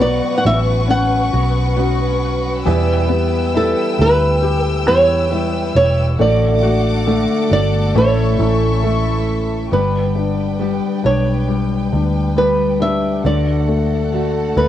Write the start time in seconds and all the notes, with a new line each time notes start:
Already playing: B1 B2 F#3 B4 F#5 C#6, downlifter
0.00 F#3 B3 F#4 D5
0.38 F#5
0.45 A1 B3 C#4 F#4 E5
0.88 C#4 F#5
1.33 B1 B3 C#4 F#4
1.76 F#3 B3 C#4 F#4
2.65 E2 B2 E3 G3 B3 G4 G5 E6
3.09 E3 G3 B3 G4
3.54 E3 G3 B3 E4 G4 A4
3.98 D2 E3 G3 B3 G4 B4
4.42 G4
4.65 A4
4.86 E2 E3 G3 B3 G4 C#5
5.30 E3 G3 B3 E4 G4
5.75 E1 C#5
6.18 A1 A2 D3 A3 D4 F#4 A4 D5 F#5 D6
6.62 A3 D4 F#4
7.06 D3 A3 D4 F#4
7.50 G1 A3 D4 F#4 D5
7.95 A1 A2 E3 A3 C#4 E4 C#5 E5 C#6
8.39 A1 A3 C#4 E4
8.83 E3 A3 C#4 E4 A4
9.71 G1 G2 D3 G3 B3 D4 G4 B4 G5
10.15 D4
10.59 G3 B3 D4 G4
11.03 B1 G3 B3 D4 G4 C#5
11.48 G3
11.92 D2 D4
12.36 G3 B3 D4 G4 B4
12.80 G3 B3 D4 G4 E5
13.24 D2 D3 A3 D4 F#4 A4 D5 F#5
13.68 A3
14.12 D3 A3 D4 F#4
14.56 D2 A3 D4 F#4 B4